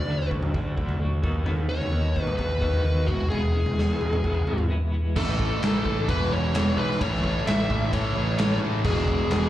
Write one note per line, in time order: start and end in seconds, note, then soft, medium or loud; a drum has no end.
0.00 0.28 D5 loud
0.07 0.51 D2 medium
0.07 0.54 D3 medium
0.07 0.52 F#3 medium
0.07 0.33 A3 medium
0.07 0.31 D4 medium
0.07 0.30 F#4 medium
0.31 0.54 A3 medium
0.31 0.54 D4 medium
0.31 0.55 F#4 medium
0.31 kick medium
0.31 floor tom medium
0.42 mid tom medium
0.54 0.76 D2 medium
0.54 0.77 F#3 medium
0.54 0.77 A3 medium
0.54 0.76 D4 medium
0.54 0.75 F#4 medium
0.54 kick medium
0.54 floor tom medium
0.76 0.99 D2 medium
0.76 1.23 D3 medium
0.76 0.98 F#3 medium
0.76 0.99 A3 medium
0.76 1.00 D4 medium
0.76 1.01 F#4 medium
0.76 kick medium
0.89 floor tom medium
0.99 1.22 D2 medium
0.99 1.22 F#3 medium
0.99 1.22 A3 medium
0.99 1.23 D4 medium
0.99 1.21 F#4 medium
1.23 1.45 D#2 medium
1.23 1.44 D#3 medium
1.23 1.46 B3 medium
1.23 1.47 D#4 medium
1.23 1.47 F#4 medium
1.23 kick medium
1.46 1.68 D#2 medium
1.46 1.91 D#3 medium
1.46 1.72 B3 medium
1.46 1.70 D#4 medium
1.46 1.68 F#4 medium
1.46 floor tom medium
1.69 1.91 D#2 medium
1.69 1.93 B3 medium
1.69 1.93 D#4 medium
1.69 1.94 F#4 medium
1.69 2.23 C#5 medium
1.82 floor tom medium
1.92 2.36 D#2 medium
1.92 2.37 D#3 medium
1.92 2.18 B3 medium
1.92 2.16 D#4 medium
1.92 2.14 F#4 medium
2.15 2.38 B3 medium
2.15 2.39 D#4 medium
2.15 2.40 F#4 medium
2.15 kick medium
2.15 floor tom medium
2.23 2.37 B4 medium
2.27 mid tom medium
2.37 2.61 D#2 medium
2.37 2.62 D#3 medium
2.37 2.62 B3 medium
2.37 2.61 D#4 medium
2.37 3.10 B4 medium
2.37 kick medium
2.37 floor tom medium
2.41 2.60 F#4 medium
2.61 2.84 D#2 medium
2.61 2.83 D#3 medium
2.61 2.84 B3 medium
2.61 2.85 D#4 medium
2.61 2.86 F#4 medium
2.61 kick medium
2.73 floor tom medium
2.84 3.07 D#2 medium
2.84 3.06 D#3 medium
2.84 3.07 B3 medium
2.84 3.07 D#4 medium
2.84 3.07 F#4 medium
3.07 3.30 E1 medium
3.07 3.29 E2 medium
3.07 3.30 B2 medium
3.07 3.30 E3 medium
3.07 3.31 G#3 medium
3.07 3.32 B3 medium
3.07 3.32 E4 medium
3.07 3.29 F#4 medium
3.07 kick loud
3.30 3.54 E1 medium
3.30 3.76 E2 medium
3.30 3.77 B2 medium
3.30 3.55 E3 medium
3.30 3.54 G#3 loud
3.30 3.54 B3 medium
3.30 3.52 E4 medium
3.30 4.65 G#4 medium
3.30 floor tom medium
3.54 3.77 E1 medium
3.54 3.77 E3 medium
3.54 3.78 G#3 medium
3.54 3.78 B3 medium
3.54 3.79 E4 medium
3.66 floor tom medium
3.77 4.22 E1 medium
3.77 4.24 E2 medium
3.77 4.24 B2 medium
3.77 4.02 E3 medium
3.77 4.01 G#3 medium
3.77 4.00 B3 medium
3.77 3.99 E4 medium
3.77 snare medium
4.00 4.22 E3 medium
4.00 4.23 G#3 medium
4.00 4.24 B3 medium
4.00 4.25 E4 medium
4.00 floor tom medium
4.00 mid tom medium
4.13 mid tom medium
4.23 4.46 E1 medium
4.23 4.47 E3 medium
4.23 4.46 G#3 medium
4.23 4.46 B3 medium
4.23 4.45 E4 medium
4.23 kick medium
4.23 floor tom medium
4.46 4.69 G#1 medium
4.46 4.94 E2 medium
4.46 4.94 B2 medium
4.46 4.67 E3 medium
4.46 4.69 G#3 medium
4.46 4.69 B3 medium
4.46 4.70 E4 medium
4.46 mid tom medium
4.58 floor tom medium
4.68 4.94 E3 medium
4.68 4.93 G#3 medium
4.68 4.92 B3 medium
4.68 4.91 E4 medium
4.92 5.16 E3 medium
4.92 5.16 G#3 medium
4.92 5.15 B3 medium
4.92 5.14 E4 medium
5.16 5.55 A1 loud
5.16 5.39 A2 loud
5.16 5.40 E3 loud
5.16 5.39 A3 loud
5.16 6.09 A4 medium
5.16 kick loud
5.16 crash loud
5.29 snare soft
5.39 5.61 A2 medium
5.39 5.62 E3 loud
5.39 5.62 A3 medium
5.39 kick medium
5.62 5.82 A1 medium
5.62 5.85 A2 medium
5.62 5.86 E3 medium
5.62 5.85 A3 medium
5.62 snare loud
5.62 ride bell medium
5.85 6.04 A1 medium
5.85 6.07 A2 medium
5.85 6.09 E3 medium
5.85 6.08 A3 loud
5.85 kick medium
6.08 6.28 E1 medium
6.08 6.31 E2 loud
6.08 6.31 B2 medium
6.08 6.32 E3 loud
6.08 6.33 B4 loud
6.08 kick loud
6.08 ride bell medium
6.22 snare soft
6.31 6.50 E1 medium
6.31 6.54 E2 medium
6.31 6.54 B2 medium
6.31 6.55 E3 medium
6.31 6.80 C#5 medium
6.54 6.73 E1 medium
6.54 6.77 E2 medium
6.54 6.77 B2 medium
6.54 6.78 E3 loud
6.54 snare loud
6.54 ride bell medium
6.77 6.96 B1 loud
6.77 6.99 E2 medium
6.77 7.00 B2 medium
6.77 7.01 E3 medium
6.77 7.02 B4 medium
6.91 snare soft
7.01 7.39 A1 loud
7.01 7.22 A2 medium
7.01 7.23 E3 loud
7.01 7.23 A3 loud
7.01 7.47 C#5 medium
7.01 kick loud
7.01 ride bell medium
7.14 snare soft
7.23 7.45 A2 medium
7.23 7.47 E3 medium
7.23 7.46 A3 medium
7.23 kick medium
7.46 7.65 A1 medium
7.46 7.69 A2 medium
7.46 7.69 E3 medium
7.46 7.69 A3 loud
7.46 7.90 E5 loud
7.46 snare loud
7.46 ride bell medium
7.70 7.89 A1 medium
7.70 7.91 A2 medium
7.70 7.91 E3 medium
7.70 7.92 A3 loud
7.70 kick medium
7.92 8.14 A2 medium
7.92 8.12 A2 medium
7.92 8.14 E3 medium
7.92 8.14 A3 medium
7.92 8.58 C#5 medium
7.92 kick loud
7.92 ride bell medium
8.15 8.35 A1 medium
8.15 8.37 A2 medium
8.15 8.37 E3 medium
8.15 8.38 A3 medium
8.38 8.58 A1 medium
8.38 8.60 A2 medium
8.38 8.61 E3 medium
8.38 8.61 A3 loud
8.38 snare loud
8.38 ride bell medium
8.61 8.81 A1 medium
8.61 8.83 A2 medium
8.61 8.84 E3 medium
8.61 8.84 A3 medium
8.84 9.23 E1 loud
8.84 9.07 E2 medium
8.84 9.07 B2 loud
8.84 9.08 E3 loud
8.84 9.49 G#4 medium
8.84 kick loud
8.84 crash loud
8.97 snare soft
9.08 9.30 E2 medium
9.08 9.31 B2 medium
9.08 9.31 E3 medium
9.08 kick medium
9.30 9.49 E1 loud
9.30 9.49 E2 medium
9.30 9.49 B2 loud
9.30 9.49 E3 loud
9.30 snare loud
9.30 ride bell medium